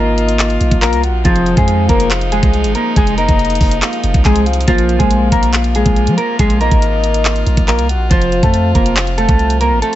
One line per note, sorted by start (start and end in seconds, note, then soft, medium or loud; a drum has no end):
0.00 0.58 G#1 loud
0.00 4.64 C3 medium
0.00 8.07 F3 medium
0.00 0.79 A#3 medium
0.00 1.20 A#3 medium
0.00 1.22 A#3 medium
0.00 1.22 F4 medium
0.00 0.78 A#4 medium
0.00 0.78 D#5 medium
0.18 closed hi-hat medium
0.29 closed hi-hat medium
0.39 clap loud
0.39 closed hi-hat medium
0.50 closed hi-hat medium
0.61 0.71 A#1 loud
0.61 closed hi-hat medium
0.71 0.94 A#1 loud
0.71 kick loud
0.71 closed hi-hat medium
0.82 1.01 A#3 medium
0.82 1.01 A#4 medium
0.82 1.02 F5 medium
0.82 clap loud
0.82 closed hi-hat soft
0.93 1.10 C2 loud
0.93 closed hi-hat medium
1.03 1.24 F#5 medium
1.03 closed hi-hat medium
1.09 1.24 A#1 loud
1.24 1.56 F1 loud
1.24 4.23 F3 medium
1.24 1.56 F3 medium
1.24 4.64 G#3 medium
1.24 4.24 C4 medium
1.24 4.64 D#4 medium
1.24 4.21 D#4 medium
1.24 1.55 F4 medium
1.24 4.22 G#4 medium
1.24 kick loud
1.24 closed hi-hat medium
1.36 closed hi-hat medium
1.46 2.92 F5 loud
1.46 closed hi-hat medium
1.57 1.88 F2 loud
1.57 1.88 G#3 medium
1.57 1.88 G#4 medium
1.57 kick loud
1.57 closed hi-hat medium
1.68 closed hi-hat medium
1.89 2.41 F1 loud
1.89 2.08 A#3 medium
1.89 2.08 A#4 medium
1.89 kick loud
1.89 closed hi-hat medium
2.00 closed hi-hat medium
2.11 clap loud
2.11 closed hi-hat medium
2.21 closed hi-hat medium
2.32 2.73 G#3 medium
2.32 2.72 G#4 loud
2.32 closed hi-hat medium
2.43 2.66 C2 loud
2.43 kick loud
2.43 closed hi-hat medium
2.54 closed hi-hat soft
2.64 2.75 G#1 loud
2.64 closed hi-hat medium
2.75 2.94 A#3 medium
2.75 2.94 A#4 medium
2.75 closed hi-hat medium
2.96 3.27 F1 loud
2.96 3.16 G#3 medium
2.96 3.16 G#4 loud
2.96 kick loud
2.96 closed hi-hat medium
3.07 closed hi-hat medium
3.18 4.21 A#3 medium
3.18 4.21 A#4 medium
3.18 3.78 D#5 medium
3.18 closed hi-hat medium
3.29 3.59 F1 loud
3.29 kick loud
3.29 closed hi-hat medium
3.39 closed hi-hat soft
3.45 closed hi-hat medium
3.50 closed hi-hat medium
3.55 closed hi-hat medium
3.61 3.81 F1 loud
3.61 kick loud
3.61 open hi-hat medium
3.71 closed hi-hat medium
3.82 4.22 F5 medium
3.82 clap loud
3.82 closed hi-hat medium
3.93 closed hi-hat medium
4.04 4.14 F1 loud
4.04 closed hi-hat medium
4.14 4.66 C2 loud
4.14 kick loud
4.14 closed hi-hat medium
4.24 4.73 F3 medium
4.24 4.44 G#3 medium
4.24 4.68 C4 soft
4.24 4.68 D#4 soft
4.24 4.44 G#4 medium
4.24 4.68 G#4 medium
4.24 4.45 G#5 medium
4.24 kick medium
4.24 clap medium
4.24 closed hi-hat soft
4.36 closed hi-hat medium
4.46 4.67 F5 medium
4.46 closed hi-hat medium
4.53 closed hi-hat medium
4.61 closed hi-hat medium
4.67 4.99 A#1 loud
4.67 8.07 C3 medium
4.67 4.99 F3 medium
4.67 8.06 A#3 medium
4.67 8.07 A#3 medium
4.67 4.98 F4 loud
4.67 9.95 F4 medium
4.67 8.07 A#4 medium
4.67 8.07 C5 medium
4.67 8.07 F5 medium
4.67 kick loud
4.67 closed hi-hat medium
4.78 closed hi-hat medium
4.89 6.35 F5 medium
4.89 closed hi-hat medium
4.99 5.31 A#1 loud
4.99 5.30 G#3 medium
4.99 5.30 G#4 medium
4.99 kick loud
4.99 closed hi-hat medium
5.11 closed hi-hat medium
5.32 5.84 A#1 loud
5.32 5.51 A#3 medium
5.32 5.51 A#4 medium
5.32 kick loud
5.32 closed hi-hat medium
5.43 closed hi-hat medium
5.53 clap loud
5.53 closed hi-hat medium
5.64 closed hi-hat medium
5.75 6.16 G#3 medium
5.75 6.16 G#4 medium
5.75 closed hi-hat medium
5.86 6.09 A#1 loud
5.86 kick loud
5.86 closed hi-hat medium
5.96 closed hi-hat soft
6.07 6.17 F3 loud
6.07 closed hi-hat medium
6.17 6.37 A#3 medium
6.17 6.36 A#4 medium
6.17 closed hi-hat medium
6.39 6.70 A#1 loud
6.39 6.59 G#3 medium
6.39 6.58 G#4 loud
6.39 kick loud
6.39 closed hi-hat loud
6.50 closed hi-hat medium
6.61 7.64 A#3 medium
6.61 7.64 A#4 medium
6.61 7.64 D#5 medium
6.61 closed hi-hat medium
6.71 7.43 G#1 loud
6.71 kick medium
6.71 closed hi-hat medium
6.82 closed hi-hat medium
7.04 closed hi-hat medium
7.14 closed hi-hat medium
7.25 clap loud
7.25 closed hi-hat medium
7.36 closed hi-hat medium
7.46 7.57 A#1 loud
7.46 closed hi-hat medium
7.57 7.80 A#1 loud
7.57 kick loud
7.57 closed hi-hat medium
7.68 7.87 A#3 medium
7.68 7.87 A#4 medium
7.68 7.88 F5 medium
7.68 clap medium
7.68 closed hi-hat soft
7.79 7.96 C2 loud
7.79 closed hi-hat medium
7.89 8.10 F#5 medium
7.89 closed hi-hat medium
7.95 8.10 A#1 loud
8.09 8.42 F1 loud
8.09 9.95 C3 medium
8.09 9.95 F3 medium
8.09 8.41 F3 medium
8.09 9.95 C4 medium
8.09 9.95 F4 medium
8.09 8.41 F4 loud
8.09 9.95 C5 medium
8.09 kick loud
8.09 closed hi-hat loud
8.22 closed hi-hat medium
8.32 9.78 F5 medium
8.32 closed hi-hat medium
8.43 8.74 F2 loud
8.43 8.74 A3 medium
8.43 8.73 A4 medium
8.43 kick loud
8.43 closed hi-hat medium
8.54 closed hi-hat medium
8.75 9.26 F1 loud
8.75 8.94 A#3 medium
8.75 8.94 A#4 medium
8.75 kick medium
8.75 closed hi-hat medium
8.86 closed hi-hat medium
8.97 clap loud
8.97 closed hi-hat medium
9.07 closed hi-hat medium
9.18 9.59 A3 medium
9.18 9.58 A4 loud
9.18 closed hi-hat medium
9.29 9.73 C2 loud
9.29 kick loud
9.29 closed hi-hat medium
9.39 closed hi-hat soft
9.50 closed hi-hat medium
9.61 9.80 A#3 medium
9.61 9.79 A#4 medium
9.61 closed hi-hat medium
9.71 9.82 A1 loud
9.82 9.95 A3 medium
9.82 9.95 A4 loud
9.82 closed hi-hat medium